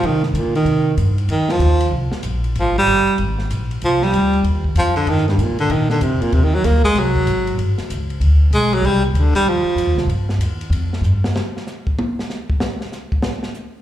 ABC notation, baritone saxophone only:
X:1
M:4/4
L:1/8
Q:"Swing" 1/4=191
K:Cm
V:1 name="Baritone saxophone" clef=bass
E, G,, B,, E,3 z2 | E, F,3 z4 | F, G,3 z4 | F, G,3 z2 F, D, |
E, G,, B,, D, E, D, C, B,, | (3C, E, _G, B, A, G,4 | z6 A, ^F, | G, B,, D, G, F,4 |
z8 | z8 | z8 |]